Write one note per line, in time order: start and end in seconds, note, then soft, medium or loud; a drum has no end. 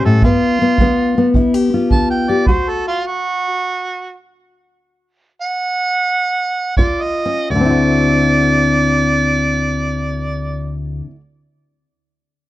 0.00 0.23 C#4 soft
0.00 0.21 G4 medium
0.05 0.24 A2 medium
0.05 0.23 A4 medium
0.22 0.76 G2 medium
0.22 0.61 B3 medium
0.22 1.32 F4 medium
0.22 kick medium
0.62 0.80 B3 medium
0.78 1.32 D3 medium
0.78 1.17 B3 medium
0.78 kick medium
1.18 2.46 B3 medium
1.34 1.87 D3 medium
1.34 1.54 E4 medium
1.34 kick medium
1.54 2.28 G4 soft
1.74 2.46 F4 medium
1.91 2.44 D3 medium
1.91 2.09 A5 medium
1.91 kick medium
2.10 2.32 G5 medium
2.29 2.45 G4 medium
2.29 2.48 D5 medium
2.47 2.96 D2 medium
2.47 3.46 F#4 medium
2.47 2.70 C5 medium
2.47 kick medium
2.69 2.86 A4 medium
2.88 3.08 F4 medium
3.06 4.17 F#4 medium
5.42 6.73 F#5 loud
6.77 7.46 D#2 medium
6.77 7.48 F4 medium
6.77 7.03 D5 medium
6.77 kick medium
7.02 7.50 D#5 medium
7.25 7.48 C#4 medium
7.50 11.00 D2 medium
7.50 10.73 D5 loud
7.55 11.05 D3 medium
7.60 11.10 C4 medium
7.65 11.15 E4 medium
7.70 11.20 F#4 soft